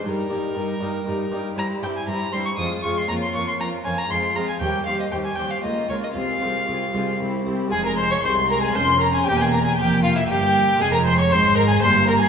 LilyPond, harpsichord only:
<<
  \new Staff \with { instrumentName = "Harpsichord" } { \time 3/4 \key ees \mixolydian \tempo 4 = 118 r8 <bes ees' g'>4 <bes ees' g'>4 <bes ees' g'>8 | \key f \minor r8 <c' e' g'>4 <c' e' g'>8 r8 <c' f' aes'>8 | r8 <des' f' bes'>4 <des' f' bes'>8 r8 <c' f' aes'>8 | r8 <c' g' c''>4 <c' g' c''>8 r8 <des' f' bes'>8 |
r8 <aes f' c''>4 <aes f' c''>8 r8 <e' c''>8 | <aes f' aes'>2 <des' f' bes'>4 | <c' g' bes'>2. | <c' f' aes'>2 <c' e' bes'>4 | }
  \new Staff \with { instrumentName = "Harpsichord" } { \clef bass \time 3/4 \key ees \mixolydian g,8 g,8 g,8 g,8 g,8 g,8 | \key f \minor g,8 g,8 g,8 g,8 f,8 f,8 | f,8 f,8 f,8 f,8 f,8 f,8 | ees,8 ees,8 ees,8 ees,8 des,8 des,8 |
c,8 c,8 c,8 c,8 c,8 c,8 | f,4 c,4 f,4 | e,4 f,4 g,4 | f,4 aes,4 g,4 | }
>>